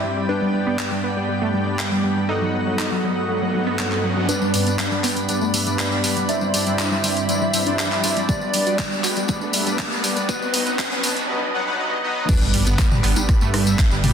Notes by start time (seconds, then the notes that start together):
Already playing: G2 G3 C4 E4 G4 B4 D5 E5 G5 B5
0.04 G3
0.17 G3
0.29 G2 B3 D4 G4 B4 D5 G5, riser
0.42 G3
0.54 G3
0.67 B3
0.79 clap
0.92 G3
1.04 B3
1.17 G3
1.29 G3
1.42 A3
1.54 G3
1.67 G3
1.79 clap
1.92 G3
2.04 G3
2.17 G3
2.29 G2 B3 D#4 F#4 A4 D#5 F#5
2.42 F#3
2.54 F#3
2.67 F#3
2.79 D#4, clap
2.92 F#3
3.04 F#3
3.29 F#3
3.42 F#3
3.54 F#3
3.67 B3
3.79 F#3, clap
3.92 clap
4.04 F#3
4.17 F#3
4.29 G2 G3 B3 D4 B4 D5 B5, closed hi-hat, tambourine, riser
4.42 G3, tambourine
4.54 G2 G3 B3 D4 B4 D5, open hi-hat, tambourine
4.66 G2 G3 B3 D4 B4 D5, closed hi-hat, tambourine
4.79 G3, clap, closed hi-hat, tambourine
4.92 G2 G3 B3 D4 B4 D5, tambourine
5.04 G2 G3 B3 D4 B4 G5, clap, open hi-hat, tambourine
5.16 G3, closed hi-hat, tambourine
5.28 G2 G3 B3 D4 B4 D5, closed hi-hat, tambourine
5.41 A3, tambourine
5.54 G2 G3 B3 D4 B4 E5, open hi-hat, tambourine
5.67 G2 G3 B3 D4 B4 D5, closed hi-hat, tambourine
5.79 clap, closed hi-hat, tambourine
5.92 G2 G3 B3 D4 B4 D5, tambourine
6.04 G2 G3 B3 D4 B4 D5, open hi-hat, tambourine
6.17 G3, closed hi-hat, tambourine
6.29 G2 G3 C4 D4 E4 C5 D5 E5, closed hi-hat, tambourine
6.41 G3, tambourine
6.54 G2 G3 D4 E4 C5 D5, open hi-hat, tambourine
6.66 G2 G3 D4 E4 C5 D5, closed hi-hat, tambourine
6.79 D4, clap, closed hi-hat, tambourine
6.92 G2 G3 D4 E4 C5 D5, tambourine
7.04 G2 G3 D4 E4 C5 G5, open hi-hat, tambourine
7.17 closed hi-hat, tambourine
7.29 G2 G3 D4 E4 C5 D5, closed hi-hat, tambourine
7.42 G3, tambourine
7.53 G2 G3 D4 E4 C5 E5, open hi-hat, tambourine
7.66 G2 G3 D4 E4 C5 D5, closed hi-hat, tambourine
7.79 G3, clap, closed hi-hat, tambourine
7.92 G2 G3 D4 E4 C5 D5, clap, tambourine
8.04 G2 G3 D4 E4 C5 D5, open hi-hat, tambourine
8.17 G3, closed hi-hat, tambourine
8.29 G2 G3 B3 D4 G4 B4 D5, kick, closed hi-hat, tambourine
8.41 G3, tambourine
8.53 G2 G3 B3 D4 B4 D5, open hi-hat, tambourine
8.67 G2 G3 B3 D4 F#4 B4 D5, closed hi-hat, tambourine
8.79 kick, clap, closed hi-hat, tambourine
8.92 G2 G3 B3 D4 B4 D5, tambourine
9.04 G2 G3 B3 D4 F#4 B4 G5, clap, open hi-hat, tambourine
9.16 G3, closed hi-hat, tambourine
9.28 G2 G3 B3 D4 B4 D5, kick, closed hi-hat, tambourine
9.41 D4, tambourine
9.53 G2 G3 B3 D4 B4 E5, open hi-hat, tambourine
9.67 G2 G3 B3 D4 B4 D5, closed hi-hat, tambourine
9.79 kick, clap, closed hi-hat, tambourine
9.92 G2 G3 B3 D4 B4 D5, tambourine
10.04 G3 B3 D4 B4 D5, open hi-hat, tambourine
10.16 G3, closed hi-hat, tambourine
10.29 G2 F#3 B3 D#4 F#4 B4 D#5, kick, closed hi-hat, tambourine
10.42 B3, tambourine
10.54 G2 F#3 B3 D#4 B4 D#5, open hi-hat, tambourine
10.67 G2 F#3 B3 D#4 B4 D#5, closed hi-hat, tambourine
10.79 F#4, kick, clap, closed hi-hat, tambourine
10.92 G2 F#3 B3 D#4 B4 D#5, closed hi-hat, tambourine
11.03 G2 F#3 B3 D#4 B4 A5, open hi-hat, tambourine
11.16 closed hi-hat, tambourine
11.29 G2 F#3 B3 D#4 B4 D#5
11.54 G2 F#3 B3 D#4 B4 F#5
11.67 G2 F#3 B3 D#4 B4 F#5
11.79 G2 F#3 B3 D#4 B4 D#5
12.04 F#3 B3 D#4 B4 D#5
12.29 G1 G2 G3 B3 D4 G4 B4 D5, kick, closed hi-hat, crash, tambourine, impact
12.42 G3, tambourine
12.54 G2 G3 B3 D4 B4 D5, open hi-hat
12.67 G1 G2 G3 B3 D4 B4 D5, closed hi-hat, tambourine
12.79 G3, kick, clap, closed hi-hat, tambourine
12.92 G2 G3 B3 D4 B4 D5, mid tom, tambourine
13.04 G1 G2 G3 B3 D4 B4 G5, clap, open hi-hat
13.16 G3, closed hi-hat, tambourine, high conga
13.29 G2 G3 B3 D4 B4 D5, kick, cross-stick, closed hi-hat, tambourine
13.41 G2 A3, tambourine
13.54 G2 G3 B3 D4 B4 E5, cross-stick, open hi-hat, high conga
13.67 G2 G3 B3 D4 B4 E5, closed hi-hat, tambourine
13.79 G2 G3 B3 D4 B4 D5, kick, clap, closed hi-hat, tambourine
13.91 G1 G3, tambourine
14.04 G2 G3 B3 D4 B4 D5, mid tom, open hi-hat